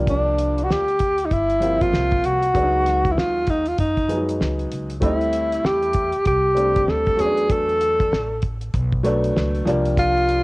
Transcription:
0.00 0.65 C2 loud
0.00 0.82 F3 medium
0.00 0.82 G3 medium
0.00 0.82 A#3 medium
0.00 0.86 D4 loud
0.07 0.66 D4 medium
0.07 kick loud
0.07 closed hi-hat medium
0.38 closed hi-hat medium
0.58 closed hi-hat soft
0.64 0.73 F#4 medium
0.69 1.28 D2 medium
0.69 1.27 G4 loud
0.69 snare loud
0.88 closed hi-hat soft
0.99 kick medium
0.99 closed hi-hat medium
1.18 closed hi-hat soft
1.26 1.34 D#4 medium
1.31 1.90 G1 medium
1.31 1.83 E4 loud
1.31 kick medium
1.31 closed hi-hat medium
1.50 closed hi-hat soft
1.60 2.42 F3 medium
1.60 2.43 G3 medium
1.60 2.43 A#3 medium
1.60 2.43 C4 medium
1.60 closed hi-hat medium
1.81 2.28 F4 loud
1.81 kick loud
1.81 closed hi-hat medium
1.93 2.22 C2 medium
1.93 snare loud
2.11 kick loud
2.11 closed hi-hat soft
2.24 2.53 C2 medium
2.24 3.14 F#4 loud
2.24 closed hi-hat medium
2.43 closed hi-hat medium
2.54 3.14 C#2 loud
2.54 3.60 F#3 medium
2.54 3.61 G#3 medium
2.54 3.61 B3 medium
2.54 2.63 D4 medium
2.54 kick loud
2.54 closed hi-hat medium
2.62 3.65 D#4 medium
2.86 snare soft
2.86 closed hi-hat medium
3.05 kick medium
3.05 closed hi-hat soft
3.12 3.20 E4 medium
3.17 3.76 D#2 medium
3.17 3.51 F4 loud
3.17 snare loud
3.47 3.69 D#4 medium
3.47 kick medium
3.47 closed hi-hat medium
3.66 3.79 F4 medium
3.66 closed hi-hat soft
3.78 4.37 F#2 medium
3.78 4.37 D#4 medium
3.78 kick medium
3.78 closed hi-hat medium
3.97 kick medium
3.97 closed hi-hat soft
4.08 4.17 F3 medium
4.08 4.90 G#3 medium
4.08 4.91 B3 medium
4.08 4.91 D#4 medium
4.08 closed hi-hat medium
4.15 4.93 F#3 medium
4.29 closed hi-hat medium
4.40 4.70 C#2 medium
4.40 snare medium
4.59 closed hi-hat soft
4.72 5.01 C#2 medium
4.72 closed hi-hat medium
4.90 closed hi-hat soft
5.00 5.61 D2 medium
5.00 5.09 F#3 medium
5.00 6.08 A3 medium
5.00 6.08 C4 medium
5.00 6.08 E4 medium
5.00 kick loud
5.00 closed hi-hat medium
5.04 6.11 G3 medium
5.04 5.68 E4 medium
5.21 closed hi-hat soft
5.33 closed hi-hat medium
5.52 closed hi-hat medium
5.64 6.11 E2 medium
5.64 6.27 G4 loud
5.64 snare loud
5.83 closed hi-hat soft
5.93 kick medium
5.93 closed hi-hat medium
6.12 muted upright bass stroke soft
6.12 closed hi-hat soft
6.25 6.85 C2 loud
6.25 6.91 G4 medium
6.25 kick medium
6.25 closed hi-hat medium
6.55 7.18 G3 medium
6.55 7.16 A3 medium
6.55 7.18 C4 medium
6.55 7.19 D4 medium
6.55 closed hi-hat medium
6.76 kick loud
6.76 closed hi-hat medium
6.88 7.17 D2 medium
6.88 7.22 A4 loud
6.88 snare medium
7.06 kick loud
7.06 closed hi-hat soft
7.17 8.13 E2 medium
7.17 8.24 F#3 medium
7.17 8.24 A3 medium
7.17 8.25 B3 medium
7.17 7.27 C#4 medium
7.17 7.53 G#4 loud
7.17 closed hi-hat medium
7.25 8.28 D4 medium
7.37 closed hi-hat soft
7.50 8.43 A4 loud
7.50 kick loud
7.50 closed hi-hat medium
7.69 closed hi-hat soft
7.81 closed hi-hat medium
8.00 kick medium
8.00 closed hi-hat soft
8.12 8.70 A1 medium
8.12 snare loud
8.42 kick medium
8.42 closed hi-hat medium
8.61 closed hi-hat soft
8.74 9.32 B1 loud
8.74 kick medium
8.74 closed hi-hat medium
8.92 kick medium
9.03 9.66 F#3 medium
9.03 9.66 A3 medium
9.03 9.66 B3 medium
9.03 9.66 D4 loud
9.03 closed hi-hat medium
9.24 closed hi-hat soft
9.36 9.65 C#2 medium
9.36 snare loud
9.55 closed hi-hat soft
9.65 10.44 C2 loud
9.65 10.44 F3 medium
9.65 10.44 G3 medium
9.65 10.44 A#3 medium
9.65 10.44 D4 loud
9.65 closed hi-hat medium
9.86 closed hi-hat medium
9.98 10.44 F4 loud
9.98 kick loud
9.98 closed hi-hat medium
10.17 closed hi-hat soft
10.29 closed hi-hat medium

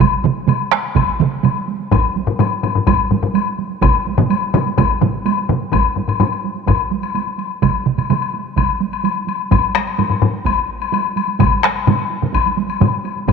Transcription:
0.00 taiko loud
0.00 taiko mid loud
0.00 taiko high medium
0.00 high woodblock soft
0.12 taiko high soft
0.24 taiko mid loud
0.24 taiko high medium
0.36 taiko high soft
0.48 taiko mid loud
0.48 taiko high medium
0.48 high woodblock soft
0.60 taiko high soft
0.71 taiko rim medium
0.71 taiko high soft
0.71 high woodblock soft
0.96 taiko loud
0.96 taiko mid medium
0.96 taiko high medium
0.96 high woodblock soft
1.08 taiko high soft
1.19 taiko mid loud
1.19 taiko high medium
1.32 taiko high soft
1.43 taiko mid medium
1.43 taiko high medium
1.43 high woodblock soft
1.56 taiko high soft
1.68 taiko high medium
1.79 taiko high soft
1.91 taiko loud
1.91 taiko low-mid medium
1.91 taiko high medium
1.91 high woodblock soft
2.04 taiko high soft
2.16 taiko high medium
2.27 taiko low-mid medium
2.27 taiko high soft
2.39 taiko low-mid medium
2.39 taiko high medium
2.39 high woodblock soft
2.52 taiko high soft
2.63 taiko low-mid medium
2.63 taiko high medium
2.63 high woodblock soft
2.75 taiko low-mid medium
2.87 taiko loud
2.87 taiko low-mid medium
2.87 taiko high medium
2.87 high woodblock soft
3.00 taiko high soft
3.11 taiko low-mid medium
3.11 taiko high medium
3.23 taiko low-mid medium
3.23 taiko high soft
3.35 taiko high medium
3.35 high woodblock soft
3.47 taiko high soft
3.59 taiko high soft
3.71 taiko high soft
3.82 taiko loud
3.82 taiko low-mid medium
3.82 taiko mid medium
3.82 taiko high medium
3.82 high woodblock medium
3.95 taiko high soft
4.07 taiko high medium
4.18 taiko low-mid loud
4.18 taiko mid loud
4.18 taiko high soft
4.30 taiko high medium
4.30 high woodblock soft
4.42 taiko high soft
4.54 taiko low-mid loud
4.54 taiko mid loud
4.54 taiko high soft
4.54 high woodblock soft
4.66 taiko high medium
4.78 taiko loud
4.78 taiko low-mid medium
4.78 taiko mid medium
4.78 taiko high medium
4.78 high woodblock soft
4.90 taiko high soft
5.01 taiko low-mid medium
5.01 taiko mid loud
5.01 taiko high medium
5.14 taiko high soft
5.26 taiko high medium
5.26 high woodblock soft
5.37 taiko high soft
5.49 taiko low-mid medium
5.49 taiko mid medium
5.49 taiko high medium
5.62 taiko high soft
5.72 taiko medium
5.72 taiko low-mid medium
5.72 taiko high medium
5.72 high woodblock soft
5.86 taiko high soft
5.96 taiko low-mid medium
5.96 taiko high soft
6.08 taiko low-mid medium
6.08 taiko high soft
6.08 high woodblock soft
6.20 taiko low-mid medium
6.20 taiko high medium
6.20 high woodblock soft
6.32 taiko high soft
6.32 high woodblock soft
6.44 taiko high soft
6.56 taiko high soft
6.67 taiko medium
6.67 taiko low-mid medium
6.67 taiko high medium
6.67 high woodblock soft
6.91 taiko high soft
7.03 taiko high soft
7.03 high woodblock soft
7.15 taiko high medium
7.15 high woodblock soft
7.26 taiko high soft
7.38 taiko high soft
7.38 high woodblock soft
7.62 taiko medium
7.62 taiko mid medium
7.62 taiko high medium
7.62 high woodblock soft
7.86 taiko mid medium
7.86 taiko high soft
7.98 taiko mid medium
7.98 taiko high soft
7.98 high woodblock soft
8.10 taiko mid medium
8.10 taiko high medium
8.10 high woodblock soft
8.22 taiko high soft
8.22 high woodblock soft
8.34 taiko high soft
8.45 taiko high soft
8.56 taiko medium
8.56 taiko mid medium
8.56 taiko high medium
8.56 high woodblock soft
8.80 taiko high medium
8.92 taiko high soft
8.92 high woodblock soft
9.04 taiko high medium
9.04 high woodblock soft
9.16 taiko high soft
9.27 taiko high soft
9.27 high woodblock soft
9.39 taiko high soft
9.51 taiko medium
9.51 taiko low-mid medium
9.51 taiko high medium
9.51 high woodblock soft
9.63 taiko high soft
9.75 taiko rim medium
9.75 taiko high medium
9.87 taiko high soft
9.87 high woodblock soft
9.98 taiko low-mid medium
9.98 taiko high medium
9.98 high woodblock soft
10.10 taiko low-mid medium
10.10 taiko high soft
10.10 high woodblock soft
10.22 taiko low-mid medium
10.22 taiko high soft
10.34 taiko high soft
10.45 taiko medium
10.45 taiko high medium
10.45 high woodblock soft
10.81 taiko high soft
10.81 high woodblock soft
10.93 taiko high medium
10.93 high woodblock soft
11.05 taiko high soft
11.16 taiko high soft
11.16 high woodblock soft
11.28 taiko high soft
11.39 taiko medium
11.39 taiko low-mid medium
11.39 taiko mid medium
11.39 taiko high medium
11.39 high woodblock medium
11.52 taiko high soft
11.63 taiko rim medium
11.63 taiko high medium
11.76 taiko high soft
11.76 high woodblock soft
11.87 taiko low-mid medium
11.87 taiko mid loud
11.87 taiko high medium
11.87 high woodblock soft
11.99 taiko high soft
11.99 high woodblock soft
12.10 taiko high soft
12.22 taiko low-mid medium
12.22 taiko mid medium
12.22 taiko high soft
12.33 taiko medium
12.33 taiko high medium
12.33 high woodblock medium
12.46 taiko high soft
12.57 taiko high medium
12.69 taiko high soft
12.69 high woodblock soft
12.80 taiko low-mid loud
12.80 taiko mid medium
12.80 taiko high medium
12.80 high woodblock soft
12.92 taiko high soft
13.05 taiko high soft
13.05 high woodblock soft
13.17 taiko high soft
13.28 taiko medium
13.28 taiko low-mid medium
13.28 taiko high medium
13.28 high woodblock soft

